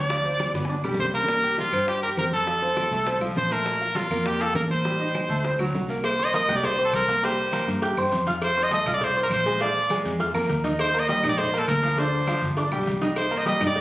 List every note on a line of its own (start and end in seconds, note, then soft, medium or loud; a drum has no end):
0.00 0.49 D2 medium
0.00 0.53 D5 loud
0.10 0.22 F3 medium
0.10 0.22 F4 medium
0.10 high bongo medium
0.10 high conga soft
0.10 long guiro medium
0.10 maracas medium
0.25 0.49 C4 medium
0.25 0.49 C5 medium
0.25 high bongo soft
0.25 high conga soft
0.25 maracas soft
0.40 high bongo medium
0.40 high conga medium
0.40 short guiro medium
0.40 claves medium
0.40 maracas soft
0.54 0.82 G1 medium
0.54 0.66 B3 medium
0.54 0.66 B4 medium
0.54 high bongo medium
0.54 high conga soft
0.54 short guiro medium
0.54 maracas medium
0.65 high bongo medium
0.69 0.81 D4 medium
0.69 0.81 D5 medium
0.69 high conga soft
0.69 long guiro medium
0.69 maracas medium
0.84 0.98 B1 medium
0.84 1.08 G3 medium
0.84 1.09 G4 medium
0.84 low bongo medium
0.84 high conga soft
0.84 claves medium
0.84 maracas soft
0.94 low bongo medium
0.99 1.68 C2 medium
0.99 1.07 C5 medium
0.99 high conga medium
0.99 short guiro medium
0.99 maracas soft
1.04 low bongo medium
1.14 1.38 A#3 medium
1.14 1.38 A#4 medium
1.14 1.56 A#4 loud
1.14 high conga soft
1.14 short guiro medium
1.14 maracas medium
1.24 low bongo medium
1.28 high bongo medium
1.28 high conga soft
1.28 long guiro medium
1.28 claves medium
1.28 maracas medium
1.43 1.68 G4 medium
1.43 1.68 G5 medium
1.43 high bongo soft
1.43 high conga soft
1.58 1.87 F4 medium
1.58 high bongo medium
1.58 high conga medium
1.58 short guiro medium
1.58 maracas soft
1.72 2.14 G2 medium
1.72 1.97 C4 medium
1.72 1.97 C5 medium
1.72 high conga soft
1.72 short guiro medium
1.72 claves medium
1.72 maracas medium
1.88 2.02 G4 medium
1.88 high bongo medium
1.88 high conga soft
1.88 long guiro medium
1.88 maracas medium
2.02 2.15 G4 medium
2.02 2.10 A#4 medium
2.02 2.15 G5 medium
2.02 high bongo soft
2.02 high conga soft
2.02 maracas soft
2.17 2.86 F2 medium
2.17 2.42 C4 medium
2.17 2.25 A#4 medium
2.17 2.42 C5 medium
2.17 high bongo soft
2.17 low bongo medium
2.17 high conga medium
2.17 short guiro medium
2.17 claves medium
2.17 maracas soft
2.33 3.18 A4 medium
2.33 high bongo soft
2.33 high conga medium
2.33 short guiro medium
2.33 maracas medium
2.46 2.59 F3 medium
2.46 2.59 F4 medium
2.46 high bongo medium
2.46 high conga soft
2.46 long guiro medium
2.46 maracas medium
2.62 2.87 C4 medium
2.62 2.87 C5 medium
2.62 high bongo soft
2.62 high conga soft
2.76 high bongo medium
2.76 high conga medium
2.76 short guiro medium
2.76 claves medium
2.76 maracas soft
2.91 3.19 C2 medium
2.91 3.04 A3 medium
2.91 3.04 A4 medium
2.91 high conga soft
2.91 short guiro medium
2.91 maracas medium
3.06 3.19 C4 medium
3.06 3.19 C5 medium
3.06 high bongo medium
3.06 high conga soft
3.06 long guiro medium
3.06 maracas medium
3.21 3.35 C2 medium
3.21 3.46 F3 medium
3.21 3.46 F4 medium
3.21 high bongo soft
3.21 high conga soft
3.21 claves medium
3.21 maracas soft
3.36 4.05 A#1 medium
3.36 3.54 C5 medium
3.36 high bongo soft
3.36 low bongo medium
3.36 high conga medium
3.36 short guiro medium
3.36 maracas soft
3.51 3.75 A3 medium
3.51 3.76 A4 medium
3.51 3.98 A#4 loud
3.51 high bongo soft
3.51 high conga soft
3.51 short guiro medium
3.51 maracas medium
3.66 high bongo medium
3.66 high conga soft
3.66 long guiro medium
3.66 claves medium
3.66 maracas medium
3.80 4.05 F4 medium
3.80 4.06 F5 medium
3.80 high bongo soft
3.80 high conga soft
3.80 maracas soft
3.95 4.28 F4 medium
3.95 high bongo medium
3.95 high conga medium
3.95 short guiro medium
3.95 maracas soft
4.10 4.52 F2 medium
4.10 4.35 A#3 medium
4.10 4.35 A#4 medium
4.10 short guiro medium
4.10 claves medium
4.10 maracas medium
4.25 4.40 G4 medium
4.25 high bongo medium
4.25 high conga soft
4.25 long guiro medium
4.25 maracas medium
4.38 4.53 F4 medium
4.38 4.55 A4 medium
4.38 4.43 A#4 medium
4.38 4.53 F5 medium
4.38 high bongo soft
4.38 high conga soft
4.38 maracas soft
4.54 5.24 A1 medium
4.54 4.80 A#3 medium
4.54 4.80 A#4 medium
4.54 4.62 A#4 medium
4.54 high bongo soft
4.54 low bongo medium
4.54 high conga medium
4.54 short guiro medium
4.54 claves medium
4.54 maracas soft
4.70 5.56 C5 medium
4.70 high bongo soft
4.70 high conga medium
4.70 short guiro medium
4.70 maracas medium
4.84 4.97 G3 medium
4.84 4.97 G4 medium
4.84 high bongo medium
4.84 high conga soft
4.84 long guiro medium
4.84 maracas medium
4.99 5.24 D#4 medium
4.99 5.24 D#5 medium
4.99 high bongo soft
4.99 high conga soft
4.99 maracas soft
5.14 high bongo medium
5.14 high conga medium
5.14 short guiro medium
5.14 claves medium
5.14 maracas soft
5.29 5.57 D2 medium
5.29 5.42 A3 medium
5.29 5.42 A4 medium
5.29 high conga soft
5.29 short guiro medium
5.29 maracas medium
5.44 5.57 C4 medium
5.44 5.57 C5 medium
5.44 high bongo medium
5.44 high conga soft
5.44 long guiro medium
5.44 maracas medium
5.59 5.73 D2 medium
5.59 5.84 F#3 medium
5.59 5.84 F#4 medium
5.59 high bongo soft
5.59 high conga soft
5.59 claves medium
5.59 maracas soft
5.73 6.43 C2 medium
5.73 high bongo soft
5.73 low bongo medium
5.73 high conga medium
5.73 short guiro medium
5.73 maracas soft
5.88 6.02 A#3 medium
5.88 6.02 A#4 medium
5.88 high bongo soft
5.88 high conga soft
5.88 short guiro medium
5.88 maracas medium
6.04 6.27 C5 loud
6.04 cowbell loud
6.04 high conga soft
6.04 long guiro medium
6.04 claves medium
6.04 maracas medium
6.19 6.31 C4 medium
6.19 6.31 C5 medium
6.19 6.31 C6 medium
6.19 high conga soft
6.25 6.34 D#5 loud
6.34 6.46 A#3 medium
6.34 6.46 A#4 medium
6.34 6.58 D#5 loud
6.34 6.46 A#5 medium
6.34 cowbell medium
6.34 high conga medium
6.34 short guiro medium
6.34 maracas medium
6.48 6.90 C2 medium
6.48 6.73 G4 medium
6.48 6.73 G5 medium
6.48 6.73 G6 medium
6.48 cowbell medium
6.48 high conga soft
6.48 low conga medium
6.48 short guiro medium
6.48 claves medium
6.56 6.66 D5 loud
6.63 6.84 C5 loud
6.63 cowbell loud
6.63 high conga soft
6.63 low conga medium
6.63 long guiro medium
6.63 maracas medium
6.78 7.03 C4 medium
6.78 7.03 C5 medium
6.78 7.03 C6 medium
6.78 high conga soft
6.85 6.93 A4 medium
6.93 7.62 C2 medium
6.93 7.26 A#4 medium
6.93 cowbell medium
6.93 high conga medium
6.93 short guiro medium
6.93 claves medium
6.93 maracas medium
7.08 7.20 A#3 medium
7.08 7.20 A#4 medium
7.08 7.21 A#5 medium
7.08 cowbell medium
7.08 short guiro medium
7.08 maracas soft
7.23 7.47 G3 medium
7.23 7.48 G4 medium
7.23 7.68 C5 medium
7.23 7.48 G5 medium
7.23 cowbell loud
7.23 high conga soft
7.23 long guiro medium
7.23 maracas medium
7.38 high conga soft
7.38 maracas medium
7.52 7.77 A#3 medium
7.52 7.77 A#4 medium
7.52 7.77 A#5 medium
7.52 cowbell medium
7.52 high conga medium
7.52 short guiro medium
7.52 claves medium
7.52 maracas medium
7.67 7.95 G2 medium
7.67 cowbell medium
7.67 high conga soft
7.67 short guiro medium
7.67 maracas soft
7.82 7.95 G4 medium
7.82 7.95 G5 medium
7.82 7.95 G6 medium
7.82 cowbell loud
7.82 high conga soft
7.82 long guiro medium
7.82 maracas medium
7.97 8.11 G2 medium
7.97 8.22 C4 medium
7.97 8.22 C5 medium
7.97 8.22 C6 medium
7.97 high conga soft
7.97 claves medium
8.12 8.81 F2 medium
8.12 cowbell medium
8.12 high conga medium
8.12 short guiro medium
8.12 maracas medium
8.26 8.51 F4 medium
8.26 8.51 F5 medium
8.26 8.52 F6 medium
8.26 cowbell medium
8.26 high conga medium
8.26 short guiro medium
8.26 maracas soft
8.41 8.65 C5 loud
8.41 cowbell loud
8.41 high conga soft
8.41 long guiro medium
8.41 claves medium
8.41 maracas medium
8.56 8.69 C4 medium
8.56 8.69 C5 medium
8.56 8.69 C6 medium
8.56 high conga soft
8.56 maracas medium
8.63 8.72 D#5 loud
8.71 8.84 A3 medium
8.71 8.84 A4 medium
8.71 8.91 D#5 loud
8.71 8.85 A5 medium
8.71 cowbell medium
8.71 high conga medium
8.71 short guiro medium
8.71 maracas medium
8.86 9.28 C2 loud
8.86 9.11 F4 medium
8.86 9.11 F5 medium
8.86 9.11 F6 medium
8.86 cowbell medium
8.86 high conga soft
8.86 low conga medium
8.86 short guiro medium
8.86 claves medium
8.86 maracas soft
8.94 9.06 D5 loud
9.01 9.22 C5 loud
9.01 cowbell loud
9.01 high conga soft
9.01 low conga medium
9.01 long guiro medium
9.01 maracas medium
9.15 9.41 C4 medium
9.15 9.41 C5 medium
9.15 9.41 C6 medium
9.15 high conga soft
9.15 maracas medium
9.23 9.27 A#4 medium
9.30 9.99 A#1 medium
9.30 9.60 C5 loud
9.30 cowbell medium
9.30 high conga medium
9.30 short guiro medium
9.30 claves medium
9.30 maracas medium
9.45 9.58 G#3 medium
9.45 9.58 G#4 medium
9.45 9.58 G#5 medium
9.45 cowbell medium
9.45 high conga medium
9.45 short guiro medium
9.45 maracas soft
9.60 9.85 F3 medium
9.60 9.85 F4 medium
9.60 10.03 D5 medium
9.60 9.85 F5 medium
9.60 cowbell loud
9.60 long guiro medium
9.60 maracas medium
9.75 high conga soft
9.75 maracas medium
9.90 10.14 G#3 medium
9.90 10.15 G#4 medium
9.90 10.15 G#5 medium
9.90 cowbell medium
9.90 high conga medium
9.90 short guiro medium
9.90 claves medium
9.90 maracas medium
10.05 10.33 F2 medium
10.05 cowbell medium
10.05 high conga soft
10.05 short guiro medium
10.05 maracas soft
10.19 10.32 F4 medium
10.19 10.32 F5 medium
10.19 10.32 F6 medium
10.19 cowbell loud
10.19 high conga soft
10.19 long guiro medium
10.19 maracas medium
10.34 10.48 F2 medium
10.34 10.59 A#3 medium
10.34 10.59 A#4 medium
10.34 10.59 A#5 medium
10.34 high conga soft
10.34 claves medium
10.34 maracas medium
10.49 11.18 D#2 medium
10.49 cowbell medium
10.49 high conga medium
10.49 short guiro medium
10.49 maracas medium
10.64 10.88 D#4 medium
10.64 10.89 D#5 medium
10.64 10.89 D#6 medium
10.64 cowbell medium
10.64 high conga medium
10.64 short guiro medium
10.64 maracas soft
10.79 11.01 C5 loud
10.79 cowbell loud
10.79 high conga soft
10.79 long guiro medium
10.79 claves medium
10.79 maracas medium
10.93 11.06 A#3 medium
10.93 11.06 A#4 medium
10.93 11.06 A#5 medium
10.93 high conga soft
10.93 maracas medium
11.00 11.09 D#5 loud
11.08 11.21 G3 medium
11.08 11.21 G4 medium
11.08 11.28 D#5 loud
11.08 11.21 G5 medium
11.08 cowbell medium
11.08 high conga medium
11.08 short guiro medium
11.08 maracas medium
11.23 11.65 A#1 loud
11.23 11.48 D#4 medium
11.23 11.48 D#5 medium
11.23 11.48 D#6 medium
11.23 cowbell medium
11.23 high conga soft
11.23 low conga medium
11.23 short guiro medium
11.23 claves medium
11.23 maracas soft
11.29 11.40 D5 loud
11.38 11.60 C5 loud
11.38 cowbell loud
11.38 high conga soft
11.38 low conga medium
11.38 long guiro medium
11.38 maracas medium
11.53 11.78 A#3 medium
11.53 11.78 A#4 medium
11.53 11.78 A#5 medium
11.53 high conga soft
11.53 maracas medium
11.59 11.68 A4 medium
11.68 12.37 D2 medium
11.68 12.01 A#4 medium
11.68 cowbell medium
11.68 high conga medium
11.68 short guiro medium
11.68 claves medium
11.68 maracas medium
11.82 11.95 F3 medium
11.82 11.95 F4 medium
11.82 11.96 F5 medium
11.82 cowbell medium
11.82 short guiro medium
11.82 maracas soft
11.97 12.22 D3 medium
11.97 12.23 D4 medium
11.97 12.43 C5 medium
11.97 12.23 D5 medium
11.97 cowbell loud
11.97 high conga soft
11.97 long guiro medium
11.97 maracas medium
12.12 high conga soft
12.12 maracas medium
12.27 12.52 F3 medium
12.27 12.52 F4 medium
12.27 12.52 F5 medium
12.27 cowbell medium
12.27 high conga loud
12.27 short guiro medium
12.27 claves medium
12.27 maracas medium
12.42 12.70 G1 medium
12.42 cowbell medium
12.42 high conga soft
12.42 short guiro medium
12.42 maracas soft
12.57 12.69 D4 medium
12.57 12.70 D5 medium
12.57 12.70 D6 medium
12.57 cowbell loud
12.57 high conga soft
12.57 long guiro medium
12.57 maracas medium
12.72 12.86 B1 medium
12.72 12.96 G3 medium
12.72 12.96 G4 medium
12.72 12.97 G5 medium
12.72 high conga soft
12.72 claves medium
12.86 13.55 C2 medium
12.86 cowbell medium
12.86 high conga medium
12.86 short guiro medium
12.86 maracas medium
13.01 13.26 D#4 medium
13.01 13.26 D#5 medium
13.01 13.26 D#6 medium
13.01 cowbell medium
13.01 high conga medium
13.01 short guiro medium
13.01 maracas soft
13.16 13.39 C5 medium
13.16 cowbell loud
13.16 high conga soft
13.16 long guiro medium
13.16 claves medium
13.16 maracas medium
13.31 13.43 A#3 medium
13.31 13.43 A#4 medium
13.31 13.43 A#5 medium
13.31 high conga soft
13.31 maracas medium
13.38 13.47 D#5 loud
13.46 13.58 G3 medium
13.46 13.58 G4 medium
13.46 13.65 D#5 medium
13.46 13.58 G5 medium
13.46 cowbell medium
13.46 high conga medium
13.46 short guiro medium
13.46 maracas medium
13.60 13.81 G2 loud
13.60 13.81 D#4 medium
13.60 13.81 D#5 medium
13.60 13.81 D#6 medium
13.60 cowbell medium
13.60 high conga soft
13.60 low conga medium
13.60 short guiro medium
13.60 claves medium
13.60 maracas soft
13.67 13.81 D5 loud
13.75 cowbell loud
13.75 high conga soft
13.75 low conga medium
13.75 maracas medium